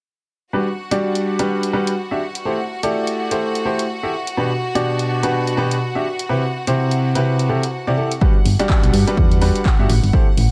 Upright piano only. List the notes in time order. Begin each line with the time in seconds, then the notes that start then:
0.53 G3 D4 F#4 G4 B4
0.91 G3 D4 F#4 G4 D5
1.39 G3 D4 F#4 G4 B4
1.73 G3 D4 F#4 G4 B4
2.11 D4 F#4 G4 E5
2.45 A3 E4 G4 A4 C5
2.83 A3 E4 G4 A4 D5
3.31 A3 E4 G4 A4 C5
3.65 A3 E4 G4 A4 C5
4.03 E4 G4 A4 E5
4.37 B2 D4 F#4 G4 B4
4.75 B2 D4 F#4 G4 D5
5.23 B2 D4 F#4 G4 B4
5.57 B2 D4 F#4 G4 B4
5.95 D4 F#4 G4 E5
6.29 C3 C4 E4 G4 B4
6.67 C3 C4 E4 G4 C5
7.15 C3 C4 E4 G4 B4
7.49 C3 C4 E4 G4 A4
7.87 C3 C4 E4 G4 D5
7.97 C4 E4 G4 A4
8.21 G3 D4 F#4 G4 B4
8.59 G3 D4 F#4 G4 D5
9.07 G3 D4 F#4 G4 B4
9.41 G3 D4 F#4 G4 B4
9.79 D4 F#4 G4 E5
10.13 A3 E4 G4 A4 C5